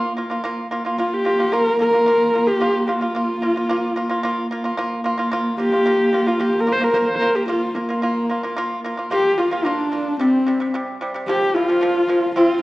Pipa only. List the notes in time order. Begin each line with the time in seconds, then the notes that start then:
Already playing: A#3 F4
0.17 A#3 F4
0.30 A#3 F4
0.44 A#3 F4
0.71 A#3 F4
0.85 A#3 F4
0.98 A#3 F4
1.25 A#3 F4
1.39 A#3 F4
1.52 A#3 F4
1.79 A#3 F4
1.93 A#3 F4
2.06 A#3 F4
2.34 A#3 F4
2.47 A#3 F4
2.60 A#3 F4
2.88 A#3 F4
3.01 A#3 F4
3.15 A#3 F4
3.42 A#3 F4
3.56 A#3 F4
3.69 A#3 F4
3.96 A#3 F4
4.10 A#3 F4
4.23 A#3 F4
4.51 A#3 F4
4.64 A#3 F4
4.78 A#3 F4
5.04 A#3 F4
5.18 A#3 F4
5.32 A#3 F4
5.58 A#3 F4
5.72 A#3 F4
5.86 A#3 F4
6.13 A#3 F4
6.27 A#3 F4
6.39 A#3 F4
6.67 A#3 F4
6.80 A#3 F4
6.94 A#3 F4
7.21 A#3 F4
7.35 A#3 F4
7.48 A#3 F4
7.75 A#3 F4
7.89 A#3 F4
8.02 A#3 F4
8.30 A#3 F4
8.43 A#3 F4
8.57 A#3 F4
8.84 A#3 F4
8.97 A#3 F4
9.11 A#3 F4
9.38 A#3 F4
9.51 A#3 F4
9.65 A#3 F4
9.92 A#3 F4
10.19 C3 G3
10.46 C3 G3
10.60 C3 G3
10.74 C3 G3
11.01 C3 G3
11.14 C3 G3
11.28 A#2 F3
11.55 A#2 F3
11.68 A#2 F3
11.81 A#2 F3
12.09 A#2 F3
12.36 F3 C4